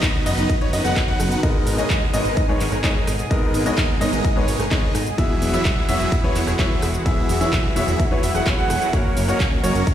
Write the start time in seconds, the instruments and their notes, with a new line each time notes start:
Already playing: analog synth pad D#3 F#4, supersaw synth F#3 B3 D#4 B4 D#5, grand piano D#5
0.03 analog synth bass C#2, kick, clap, closed hi-hat, cabasa
0.26 analog synth bass F#1, supersaw synth F#3 B3 D#4 B4 D#5, grand piano D#5, open hi-hat, cabasa
0.38 analog synth bass F#1, closed hi-hat, cabasa
0.50 analog synth bass F#1, kick, closed hi-hat, cabasa
0.61 supersaw synth F#3 B3 D#4 B4 C#5, grand piano C#5, closed hi-hat
0.73 analog synth bass F#2, supersaw synth F#3 B3 D#4 B4 D#5, grand piano D#5, open hi-hat, cabasa
0.85 analog synth bass F#1, supersaw synth F#3 B3 D#4 B4 F#5, grand piano F#5, cross-stick, closed hi-hat, cabasa
0.96 analog synth bass F#1, kick, clap, closed hi-hat, cabasa
1.08 supersaw synth F#3 B3 D#4 B4 F#5, grand piano F#5, closed hi-hat
1.20 analog synth bass F#1, cross-stick, open hi-hat, cabasa
1.31 closed hi-hat, cabasa
1.43 analog synth bass G#1, grand piano G#2 B3 D#4 G#4 A#4 D#5, analog synth pad B2 G#4, kick, closed hi-hat, cabasa
1.67 analog synth bass G#1, open hi-hat, cabasa
1.78 grand piano G#2 B3 D#4 G#4 C#5 D#5, supersaw synth G#3 B3 D#4 A#4 D#5, closed hi-hat, cabasa
1.90 analog synth bass D#2, kick, clap, closed hi-hat, cabasa
2.13 analog synth bass G#1, grand piano G#2 B3 D#4 G#4 C#5 D#5, supersaw synth G#3 B3 D#4 A#4 D#5, open hi-hat, cabasa
2.25 analog synth bass G#1, closed hi-hat, cabasa
2.37 analog synth bass G#1, kick, closed hi-hat, cabasa
2.48 grand piano G#2 B3 D#4 G#4 B4 C#5, supersaw synth G#3 B3 D#4 A#4 C#5
2.60 analog synth bass G#1, clap, open hi-hat, cabasa
2.72 analog synth bass G#1, cross-stick, closed hi-hat, cabasa
2.83 analog synth bass G#1, grand piano G#2 B3 D#4 G#4 C#5 D#5, supersaw synth G#3 B3 D#4 A#4 D#5, kick, clap, closed hi-hat, cabasa
3.07 analog synth bass G#1, cross-stick, open hi-hat, cabasa
3.19 closed hi-hat, cabasa
3.30 analog synth bass G#1, grand piano G#2 B3 D#4 G#4 A#4 D#5, supersaw synth G#3 B3 D#4 A#4 D#5, kick, closed hi-hat, cabasa
3.54 analog synth bass G#1, open hi-hat, cabasa
3.65 grand piano G#2 B3 D#4 G#4 C#5 D#5, supersaw synth G#3 B3 D#4 A#4 D#5, closed hi-hat, cabasa
3.78 analog synth bass D#2, kick, clap, closed hi-hat, cabasa
4.00 analog synth bass G#1, grand piano G#2 B3 D#4 G#4 C#5 D#5, supersaw synth G#3 B3 D#4 A#4 D#5, open hi-hat, cabasa
4.13 analog synth bass G#1, closed hi-hat, cabasa
4.25 analog synth bass G#1, kick, closed hi-hat, cabasa
4.36 grand piano G#2 B3 D#4 G#4 B4 C#5, supersaw synth G#3 B3 D#4 A#4 C#5
4.48 analog synth bass G#1, open hi-hat, cabasa
4.60 analog synth bass G#1, cross-stick, closed hi-hat, cabasa
4.71 grand piano G#2 B3 D#4 G#4 C#5 D#5, supersaw synth G#3 B3 D#4 D#5, kick, clap, closed hi-hat, cabasa
4.95 analog synth bass G#1, cross-stick, open hi-hat, cabasa
5.07 closed hi-hat, cabasa
5.18 analog synth bass E1, grand piano E3 B3 E4 F#4 G#4 E5, analog synth pad E3 G#3 F#4, supersaw synth F#3 B3 E4 G#4 E5, kick, closed hi-hat, cabasa
5.42 analog synth bass E1, open hi-hat, cabasa
5.53 grand piano E3 B3 E4 F#4 C#5 E5, supersaw synth F#3 B3 E4 G#4 E5, closed hi-hat, cabasa
5.65 analog synth bass B1, kick, clap, closed hi-hat, cabasa
5.88 analog synth bass E1, grand piano E3 B3 E4 F#4 C#5 E5, supersaw synth F#3 B3 E4 G#4 E5, open hi-hat, cabasa
6.00 analog synth bass E1, closed hi-hat, cabasa
6.12 analog synth bass E1, kick, closed hi-hat, cabasa
6.23 grand piano E3 B3 E4 F#4 B4 C#5, supersaw synth F#3 B3 E4 G#4 C#5
6.36 analog synth bass E1, clap, open hi-hat, cabasa
6.47 analog synth bass E1, cross-stick, closed hi-hat, cabasa
6.58 analog synth bass E1, grand piano E3 B3 E4 F#4 C#5 E5, supersaw synth F#3 E4 G#4 E5, kick, clap, closed hi-hat, cabasa
6.82 analog synth bass E1, cross-stick, open hi-hat, cabasa
6.94 closed hi-hat, cabasa
7.05 analog synth bass E1, grand piano E3 B3 E4 F#4 G#4 E5, supersaw synth F#3 B3 E4 G#4 E5, kick, closed hi-hat, cabasa
7.29 analog synth bass E1, open hi-hat, cabasa
7.40 grand piano E3 B3 E4 F#4 C#5 E5, supersaw synth F#3 B3 E4 G#4 E5, cabasa
7.53 analog synth bass B1, kick, clap, closed hi-hat, cabasa
7.76 analog synth bass E1, grand piano E3 B3 E4 F#4 C#5 E5, supersaw synth F#3 B3 E4 G#4 E5, open hi-hat, cabasa
7.88 analog synth bass E1, closed hi-hat, cabasa
7.99 analog synth bass E1, kick, closed hi-hat, cabasa
8.11 grand piano E3 B3 E4 F#4 B4 C#5, supersaw synth F#3 B3 E4 G#4 C#5
8.23 analog synth bass E1, supersaw synth F#3 B3 E4 G#4 E5, grand piano E5, open hi-hat, cabasa
8.35 analog synth bass E1, supersaw synth F#3 B3 E4 G#4 F#5, grand piano F#5, cross-stick, closed hi-hat, cabasa
8.46 analog synth bass E1, grand piano E3 B3 E4 F#4 C#5, kick, clap, closed hi-hat, cabasa
8.58 supersaw synth F#3 B3 E4 G#4 F#5, grand piano F#5
8.70 analog synth bass E1, cross-stick, open hi-hat, cabasa
8.82 closed hi-hat, cabasa
8.93 analog synth bass F#1, analog synth pad C#3 A#3, supersaw synth F#3 C#4 C#5, grand piano A#3 C#4 F#4 A#4 C#5, kick, closed hi-hat, cabasa
9.17 analog synth bass F#1, open hi-hat, cabasa
9.28 supersaw synth F#3 A#3 C#4 A#4 C#5, grand piano A#3 C#4 F#4 C#5 D#5, closed hi-hat, cabasa
9.40 analog synth bass C#2, kick, clap, closed hi-hat, cabasa
9.63 analog synth bass F#1, supersaw synth F#3 A#3 C#4 A#4 C#5, grand piano A#3 C#4 F#4 C#5 D#5, open hi-hat, cabasa
9.75 analog synth bass F#1, closed hi-hat, cabasa
9.87 kick, closed hi-hat, cabasa